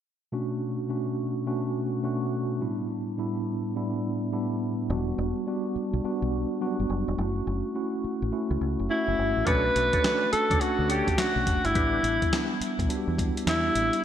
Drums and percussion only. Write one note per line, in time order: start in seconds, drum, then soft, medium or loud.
9.47 kick loud
9.47 closed hi-hat medium
9.76 closed hi-hat medium
9.93 kick medium
9.93 closed hi-hat soft
10.04 snare loud
10.04 clap medium
10.04 closed hi-hat medium
10.33 closed hi-hat medium
10.51 kick medium
10.51 closed hi-hat medium
10.61 closed hi-hat medium
10.90 closed hi-hat medium
11.07 kick medium
11.07 closed hi-hat medium
11.18 snare loud
11.18 clap medium
11.18 closed hi-hat medium
11.47 kick medium
11.47 closed hi-hat medium
11.65 closed hi-hat soft
11.75 kick loud
11.75 closed hi-hat medium
12.04 closed hi-hat medium
12.22 kick medium
12.22 closed hi-hat soft
12.33 snare loud
12.33 clap medium
12.33 closed hi-hat medium
12.62 closed hi-hat medium
12.79 kick loud
12.79 closed hi-hat medium
12.90 closed hi-hat medium
13.18 kick medium
13.18 closed hi-hat medium
13.37 closed hi-hat medium
13.47 snare loud
13.47 clap medium
13.47 closed hi-hat medium
13.75 closed hi-hat medium
13.93 closed hi-hat medium